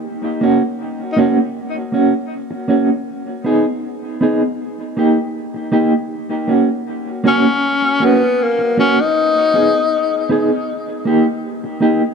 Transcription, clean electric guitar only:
X:1
M:4/4
L:1/16
Q:1/4=79
K:F#mix
V:1 name="Clean electric guitar"
z2 [A,CF] z3 [A,CF] z3 [A,CF] z3 [A,CF] z | z2 [B,DG] z3 [B,DG] z3 [A,D=G] z3 [A,DG] z | z2 [A,CF] z3 [A,CF] z3 [A,CF] z3 [A,CF] z | z2 [B,DG] z3 [B,DG] z3 [A,D=G] z3 [A,DG] z |]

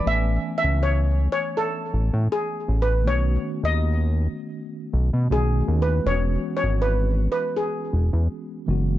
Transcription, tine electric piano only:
X:1
M:4/4
L:1/8
Q:"Swing 16ths" 1/4=80
K:E
V:1 name="Tine electric piano"
[E,A,B,Cg]8 | [D,A,B,CF]6 [C,D,A,B,CF]2 | [E,G,B,CF]6- [E,G,B,CF] [E,G,B,CF] |]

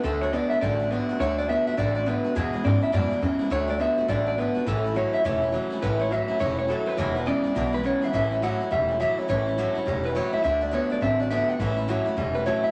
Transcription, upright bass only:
X:1
M:4/4
L:1/8
Q:"Swing" 1/4=208
K:A
V:1 name="Upright bass" clef=bass
D,,3 z A,,,3 z | D,,3 z A,,,3 z | E,, z G,, z F,, z E,, z | D,,3 z A,,,3 z |
A,,,3 z E,,,3 z | A,,,3 z E,,,3 z | E,,,3 z B,,,3 z | [K:Amix] A,,,3 z E,,,3 z |
A,,,3 z E,,,3 z | D,,3 z A,,,3 z | A,,,3 z E,,,3 z |]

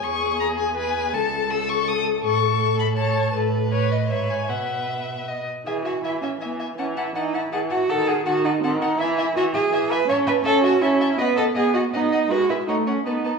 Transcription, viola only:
X:1
M:3/4
L:1/8
Q:1/4=162
K:C#dor
V:1 name="Viola"
G4 B2 | [K:E] A6- | A4 c2 | A2 B2 c2 |
B4- B z | E,2 E,2 E,2 | E,2 E,2 E,2 | D,2 D,2 D,2 |
E,2 E,2 E,2 | C2 C2 C2 | B,2 B,2 B,2 | G,2 A,2 B,2 |]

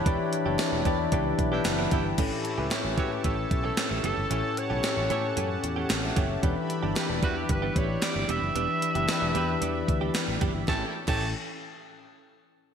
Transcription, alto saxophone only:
X:1
M:4/4
L:1/16
Q:1/4=113
K:Amix
V:1 name="Alto saxophone"
z16 | z6 F G A3 A3 A2- | A2 c8 z6 | z6 F G B2 c2 d2 e2- |
e12 z4 | a z2 a2 z8 z3 |]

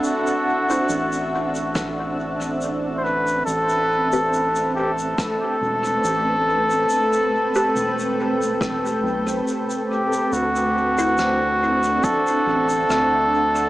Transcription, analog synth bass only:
X:1
M:4/4
L:1/8
Q:"Swing 16ths" 1/4=70
K:Dmix
V:1 name="Analog synth bass" clef=bass
z2 A,,,6 | A,,,4 z E,,, A,,,2 | z2 E,,,3 B,,, z2 | D,,4 z A,,, D,,2 |]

